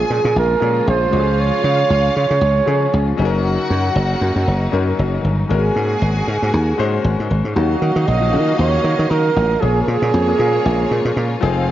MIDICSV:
0, 0, Header, 1, 6, 480
1, 0, Start_track
1, 0, Key_signature, -5, "minor"
1, 0, Tempo, 514580
1, 1288, Time_signature, 4, 2, 24, 8
1, 10927, End_track
2, 0, Start_track
2, 0, Title_t, "Flugelhorn"
2, 0, Program_c, 0, 56
2, 0, Note_on_c, 0, 68, 79
2, 345, Note_off_c, 0, 68, 0
2, 355, Note_on_c, 0, 70, 91
2, 789, Note_off_c, 0, 70, 0
2, 833, Note_on_c, 0, 72, 112
2, 1311, Note_on_c, 0, 73, 104
2, 1325, Note_off_c, 0, 72, 0
2, 2020, Note_off_c, 0, 73, 0
2, 2024, Note_on_c, 0, 73, 107
2, 2939, Note_off_c, 0, 73, 0
2, 7056, Note_on_c, 0, 66, 85
2, 7537, Note_on_c, 0, 75, 102
2, 7551, Note_off_c, 0, 66, 0
2, 8014, Note_off_c, 0, 75, 0
2, 8018, Note_on_c, 0, 73, 93
2, 8491, Note_on_c, 0, 70, 99
2, 8505, Note_off_c, 0, 73, 0
2, 8967, Note_on_c, 0, 68, 85
2, 8981, Note_off_c, 0, 70, 0
2, 9151, Note_off_c, 0, 68, 0
2, 9160, Note_on_c, 0, 70, 60
2, 9224, Note_on_c, 0, 68, 92
2, 9238, Note_off_c, 0, 70, 0
2, 10656, Note_off_c, 0, 68, 0
2, 10927, End_track
3, 0, Start_track
3, 0, Title_t, "String section"
3, 0, Program_c, 1, 48
3, 0, Note_on_c, 1, 68, 85
3, 0, Note_on_c, 1, 80, 109
3, 784, Note_off_c, 1, 80, 0
3, 785, Note_off_c, 1, 68, 0
3, 1053, Note_on_c, 1, 77, 113
3, 1054, Note_on_c, 1, 65, 100
3, 2697, Note_off_c, 1, 77, 0
3, 2698, Note_off_c, 1, 65, 0
3, 2961, Note_on_c, 1, 66, 104
3, 2962, Note_on_c, 1, 78, 108
3, 4848, Note_off_c, 1, 66, 0
3, 4848, Note_off_c, 1, 78, 0
3, 5120, Note_on_c, 1, 68, 90
3, 5124, Note_on_c, 1, 80, 92
3, 6771, Note_off_c, 1, 68, 0
3, 6774, Note_off_c, 1, 80, 0
3, 7035, Note_on_c, 1, 58, 76
3, 7038, Note_on_c, 1, 66, 81
3, 7040, Note_on_c, 1, 75, 86
3, 8925, Note_off_c, 1, 58, 0
3, 8927, Note_off_c, 1, 66, 0
3, 8927, Note_off_c, 1, 75, 0
3, 8965, Note_on_c, 1, 68, 73
3, 8965, Note_on_c, 1, 73, 88
3, 8969, Note_on_c, 1, 58, 79
3, 10613, Note_off_c, 1, 68, 0
3, 10613, Note_off_c, 1, 73, 0
3, 10615, Note_off_c, 1, 58, 0
3, 10650, Note_on_c, 1, 60, 86
3, 10650, Note_on_c, 1, 77, 95
3, 10651, Note_on_c, 1, 68, 81
3, 10927, Note_off_c, 1, 60, 0
3, 10927, Note_off_c, 1, 68, 0
3, 10927, Note_off_c, 1, 77, 0
3, 10927, End_track
4, 0, Start_track
4, 0, Title_t, "Grand piano"
4, 0, Program_c, 2, 0
4, 0, Control_c, 2, 64, 127
4, 0, Note_on_c, 2, 53, 87
4, 0, Note_on_c, 2, 58, 69
4, 0, Note_on_c, 2, 61, 75
4, 0, Note_on_c, 2, 68, 85
4, 558, Note_off_c, 2, 53, 0
4, 558, Note_on_c, 2, 53, 80
4, 563, Note_off_c, 2, 58, 0
4, 563, Note_on_c, 2, 58, 69
4, 569, Note_off_c, 2, 61, 0
4, 569, Note_on_c, 2, 61, 64
4, 572, Note_off_c, 2, 68, 0
4, 572, Note_on_c, 2, 68, 81
4, 1012, Note_off_c, 2, 53, 0
4, 1014, Note_off_c, 2, 58, 0
4, 1017, Note_off_c, 2, 61, 0
4, 1019, Note_off_c, 2, 68, 0
4, 1040, Note_on_c, 2, 53, 79
4, 1043, Note_on_c, 2, 56, 74
4, 1049, Note_on_c, 2, 66, 75
4, 1050, Note_on_c, 2, 61, 77
4, 1062, Control_c, 2, 64, 0
4, 1112, Note_on_c, 2, 68, 88
4, 1113, Note_off_c, 2, 66, 0
4, 1230, Control_c, 2, 64, 127
4, 1818, Note_off_c, 2, 53, 0
4, 1819, Note_off_c, 2, 56, 0
4, 1823, Note_off_c, 2, 61, 0
4, 1854, Note_off_c, 2, 68, 0
4, 2478, Note_on_c, 2, 53, 70
4, 2481, Note_on_c, 2, 56, 64
4, 2485, Note_on_c, 2, 61, 70
4, 2492, Note_on_c, 2, 68, 89
4, 2931, Note_off_c, 2, 53, 0
4, 2933, Note_off_c, 2, 56, 0
4, 2935, Note_off_c, 2, 61, 0
4, 2938, Note_off_c, 2, 68, 0
4, 2959, Note_on_c, 2, 54, 96
4, 2964, Note_on_c, 2, 61, 94
4, 2972, Note_on_c, 2, 63, 88
4, 2975, Note_on_c, 2, 68, 81
4, 2982, Control_c, 2, 64, 0
4, 3033, Note_on_c, 2, 70, 110
4, 3036, Note_off_c, 2, 68, 0
4, 3127, Control_c, 2, 64, 127
4, 3737, Note_off_c, 2, 54, 0
4, 3740, Note_off_c, 2, 61, 0
4, 3744, Note_off_c, 2, 63, 0
4, 3775, Note_off_c, 2, 70, 0
4, 4397, Note_on_c, 2, 54, 84
4, 4403, Note_on_c, 2, 61, 81
4, 4405, Note_on_c, 2, 63, 74
4, 4413, Note_on_c, 2, 70, 96
4, 4852, Note_off_c, 2, 54, 0
4, 4854, Note_off_c, 2, 61, 0
4, 4855, Note_off_c, 2, 63, 0
4, 4860, Note_off_c, 2, 70, 0
4, 5124, Note_on_c, 2, 56, 80
4, 5130, Note_on_c, 2, 61, 70
4, 5134, Note_on_c, 2, 66, 73
4, 5137, Note_on_c, 2, 70, 94
4, 5139, Control_c, 2, 64, 0
4, 5311, Control_c, 2, 64, 127
4, 5732, Note_off_c, 2, 56, 0
4, 5735, Note_off_c, 2, 61, 0
4, 5737, Note_off_c, 2, 66, 0
4, 5739, Note_off_c, 2, 70, 0
4, 6321, Note_on_c, 2, 56, 86
4, 6326, Note_on_c, 2, 66, 80
4, 6328, Note_on_c, 2, 61, 81
4, 6337, Note_on_c, 2, 72, 102
4, 6774, Note_off_c, 2, 56, 0
4, 6776, Note_off_c, 2, 66, 0
4, 6777, Note_off_c, 2, 61, 0
4, 6782, Note_off_c, 2, 72, 0
4, 7045, Note_on_c, 2, 54, 69
4, 7049, Note_on_c, 2, 61, 62
4, 7050, Note_on_c, 2, 63, 63
4, 7057, Note_on_c, 2, 66, 81
4, 7062, Control_c, 2, 64, 0
4, 7244, Control_c, 2, 64, 127
4, 7431, Note_off_c, 2, 54, 0
4, 7433, Note_off_c, 2, 61, 0
4, 7433, Note_off_c, 2, 63, 0
4, 7437, Note_off_c, 2, 66, 0
4, 7656, Note_on_c, 2, 53, 68
4, 7661, Note_on_c, 2, 61, 60
4, 7665, Note_on_c, 2, 63, 58
4, 7669, Note_on_c, 2, 66, 74
4, 7725, Note_off_c, 2, 53, 0
4, 7728, Note_off_c, 2, 61, 0
4, 7730, Note_off_c, 2, 63, 0
4, 7732, Note_off_c, 2, 66, 0
4, 7759, Note_on_c, 2, 65, 62
4, 7763, Note_on_c, 2, 61, 56
4, 7766, Note_on_c, 2, 63, 60
4, 7776, Note_on_c, 2, 66, 76
4, 8370, Note_off_c, 2, 65, 0
4, 8372, Note_off_c, 2, 61, 0
4, 8373, Note_off_c, 2, 63, 0
4, 8378, Note_off_c, 2, 66, 0
4, 8960, Note_on_c, 2, 53, 66
4, 8964, Note_on_c, 2, 58, 63
4, 8966, Note_on_c, 2, 61, 64
4, 8975, Note_on_c, 2, 68, 85
4, 8981, Control_c, 2, 64, 0
4, 9169, Control_c, 2, 64, 127
4, 9348, Note_off_c, 2, 53, 0
4, 9350, Note_off_c, 2, 58, 0
4, 9351, Note_off_c, 2, 61, 0
4, 9356, Note_off_c, 2, 68, 0
4, 9584, Note_on_c, 2, 53, 66
4, 9587, Note_on_c, 2, 58, 63
4, 9591, Note_on_c, 2, 61, 62
4, 9599, Note_on_c, 2, 68, 83
4, 9649, Note_off_c, 2, 53, 0
4, 9651, Note_off_c, 2, 58, 0
4, 9653, Note_off_c, 2, 61, 0
4, 9657, Note_off_c, 2, 68, 0
4, 9687, Note_on_c, 2, 53, 67
4, 9691, Note_on_c, 2, 58, 64
4, 9694, Note_on_c, 2, 61, 63
4, 9696, Note_on_c, 2, 68, 81
4, 10293, Note_off_c, 2, 53, 0
4, 10296, Note_off_c, 2, 58, 0
4, 10297, Note_off_c, 2, 61, 0
4, 10298, Note_off_c, 2, 68, 0
4, 10640, Note_on_c, 2, 53, 102
4, 10643, Note_on_c, 2, 60, 91
4, 10652, Note_on_c, 2, 63, 100
4, 10657, Note_on_c, 2, 68, 111
4, 10660, Control_c, 2, 64, 0
4, 10812, Control_c, 2, 64, 127
4, 10927, Note_off_c, 2, 53, 0
4, 10927, Note_off_c, 2, 60, 0
4, 10927, Note_off_c, 2, 63, 0
4, 10927, Note_off_c, 2, 68, 0
4, 10927, End_track
5, 0, Start_track
5, 0, Title_t, "String section"
5, 0, Program_c, 3, 48
5, 0, Note_on_c, 3, 49, 64
5, 0, Note_on_c, 3, 56, 70
5, 0, Note_on_c, 3, 58, 62
5, 0, Note_on_c, 3, 65, 81
5, 1011, Note_off_c, 3, 58, 0
5, 1059, Note_on_c, 3, 61, 60
5, 2935, Note_off_c, 3, 56, 0
5, 2939, Note_off_c, 3, 65, 0
5, 2955, Note_off_c, 3, 61, 0
5, 2976, Note_on_c, 3, 58, 65
5, 2977, Note_on_c, 3, 63, 78
5, 2980, Note_on_c, 3, 54, 63
5, 5111, Note_off_c, 3, 58, 0
5, 5112, Note_off_c, 3, 63, 0
5, 5113, Note_off_c, 3, 54, 0
5, 5131, Note_on_c, 3, 56, 64
5, 5134, Note_on_c, 3, 66, 77
5, 5138, Note_on_c, 3, 58, 68
5, 7015, Note_off_c, 3, 49, 0
5, 7032, Note_off_c, 3, 56, 0
5, 7033, Note_off_c, 3, 66, 0
5, 7033, Note_on_c, 3, 49, 73
5, 7035, Note_off_c, 3, 58, 0
5, 7035, Note_on_c, 3, 63, 69
5, 7036, Note_on_c, 3, 54, 65
5, 7040, Note_on_c, 3, 77, 81
5, 8942, Note_off_c, 3, 49, 0
5, 8943, Note_off_c, 3, 63, 0
5, 8944, Note_off_c, 3, 54, 0
5, 8945, Note_off_c, 3, 77, 0
5, 8966, Note_on_c, 3, 58, 63
5, 8971, Note_on_c, 3, 49, 73
5, 8971, Note_on_c, 3, 56, 61
5, 8972, Note_on_c, 3, 65, 77
5, 10630, Note_off_c, 3, 58, 0
5, 10633, Note_off_c, 3, 49, 0
5, 10633, Note_off_c, 3, 56, 0
5, 10646, Note_on_c, 3, 60, 61
5, 10650, Note_on_c, 3, 56, 61
5, 10652, Note_on_c, 3, 51, 67
5, 10927, Note_off_c, 3, 51, 0
5, 10927, Note_off_c, 3, 56, 0
5, 10927, Note_off_c, 3, 60, 0
5, 10927, Note_off_c, 3, 65, 0
5, 10927, End_track
6, 0, Start_track
6, 0, Title_t, "Slap bass"
6, 0, Program_c, 4, 36
6, 94, Note_on_c, 4, 46, 88
6, 189, Note_off_c, 4, 46, 0
6, 229, Note_on_c, 4, 46, 101
6, 303, Note_off_c, 4, 46, 0
6, 335, Note_on_c, 4, 34, 83
6, 507, Note_off_c, 4, 34, 0
6, 575, Note_on_c, 4, 46, 82
6, 746, Note_off_c, 4, 46, 0
6, 816, Note_on_c, 4, 34, 83
6, 987, Note_off_c, 4, 34, 0
6, 1051, Note_on_c, 4, 37, 94
6, 1398, Note_off_c, 4, 37, 0
6, 1528, Note_on_c, 4, 49, 89
6, 1702, Note_off_c, 4, 49, 0
6, 1773, Note_on_c, 4, 37, 96
6, 1945, Note_off_c, 4, 37, 0
6, 2018, Note_on_c, 4, 49, 85
6, 2112, Note_off_c, 4, 49, 0
6, 2150, Note_on_c, 4, 49, 87
6, 2224, Note_off_c, 4, 49, 0
6, 2250, Note_on_c, 4, 37, 99
6, 2423, Note_off_c, 4, 37, 0
6, 2493, Note_on_c, 4, 49, 97
6, 2665, Note_off_c, 4, 49, 0
6, 2738, Note_on_c, 4, 37, 95
6, 2908, Note_off_c, 4, 37, 0
6, 2974, Note_on_c, 4, 30, 87
6, 3319, Note_off_c, 4, 30, 0
6, 3455, Note_on_c, 4, 42, 88
6, 3626, Note_off_c, 4, 42, 0
6, 3690, Note_on_c, 4, 30, 101
6, 3863, Note_off_c, 4, 30, 0
6, 3930, Note_on_c, 4, 42, 98
6, 4027, Note_off_c, 4, 42, 0
6, 4064, Note_on_c, 4, 42, 89
6, 4140, Note_off_c, 4, 42, 0
6, 4173, Note_on_c, 4, 30, 89
6, 4345, Note_off_c, 4, 30, 0
6, 4411, Note_on_c, 4, 42, 92
6, 4584, Note_off_c, 4, 42, 0
6, 4654, Note_on_c, 4, 30, 86
6, 4826, Note_off_c, 4, 30, 0
6, 4891, Note_on_c, 4, 31, 79
6, 5064, Note_off_c, 4, 31, 0
6, 5134, Note_on_c, 4, 32, 103
6, 5306, Note_off_c, 4, 32, 0
6, 5371, Note_on_c, 4, 44, 86
6, 5544, Note_off_c, 4, 44, 0
6, 5612, Note_on_c, 4, 32, 97
6, 5784, Note_off_c, 4, 32, 0
6, 5853, Note_on_c, 4, 44, 93
6, 5949, Note_off_c, 4, 44, 0
6, 5992, Note_on_c, 4, 44, 81
6, 6066, Note_off_c, 4, 44, 0
6, 6096, Note_on_c, 4, 39, 85
6, 6267, Note_off_c, 4, 39, 0
6, 6335, Note_on_c, 4, 44, 96
6, 6507, Note_off_c, 4, 44, 0
6, 6570, Note_on_c, 4, 32, 97
6, 6667, Note_off_c, 4, 32, 0
6, 6711, Note_on_c, 4, 44, 92
6, 6785, Note_off_c, 4, 44, 0
6, 6814, Note_on_c, 4, 32, 86
6, 6910, Note_off_c, 4, 32, 0
6, 6945, Note_on_c, 4, 44, 85
6, 7021, Note_off_c, 4, 44, 0
6, 7053, Note_on_c, 4, 39, 92
6, 7225, Note_off_c, 4, 39, 0
6, 7293, Note_on_c, 4, 51, 81
6, 7389, Note_off_c, 4, 51, 0
6, 7425, Note_on_c, 4, 51, 94
6, 7501, Note_off_c, 4, 51, 0
6, 7535, Note_on_c, 4, 34, 98
6, 7775, Note_on_c, 4, 51, 93
6, 7789, Note_off_c, 4, 34, 0
6, 7947, Note_off_c, 4, 51, 0
6, 8011, Note_on_c, 4, 39, 94
6, 8184, Note_off_c, 4, 39, 0
6, 8248, Note_on_c, 4, 51, 100
6, 8346, Note_off_c, 4, 51, 0
6, 8386, Note_on_c, 4, 51, 96
6, 8462, Note_off_c, 4, 51, 0
6, 8495, Note_on_c, 4, 51, 105
6, 8667, Note_off_c, 4, 51, 0
6, 8734, Note_on_c, 4, 33, 87
6, 8906, Note_off_c, 4, 33, 0
6, 8977, Note_on_c, 4, 34, 100
6, 9148, Note_off_c, 4, 34, 0
6, 9213, Note_on_c, 4, 46, 91
6, 9309, Note_off_c, 4, 46, 0
6, 9347, Note_on_c, 4, 46, 96
6, 9422, Note_off_c, 4, 46, 0
6, 9456, Note_on_c, 4, 41, 94
6, 9628, Note_off_c, 4, 41, 0
6, 9695, Note_on_c, 4, 46, 95
6, 9867, Note_off_c, 4, 46, 0
6, 9941, Note_on_c, 4, 34, 101
6, 10110, Note_off_c, 4, 34, 0
6, 10177, Note_on_c, 4, 46, 88
6, 10272, Note_off_c, 4, 46, 0
6, 10308, Note_on_c, 4, 46, 93
6, 10383, Note_off_c, 4, 46, 0
6, 10415, Note_on_c, 4, 46, 95
6, 10586, Note_off_c, 4, 46, 0
6, 10657, Note_on_c, 4, 29, 85
6, 10927, Note_off_c, 4, 29, 0
6, 10927, End_track
0, 0, End_of_file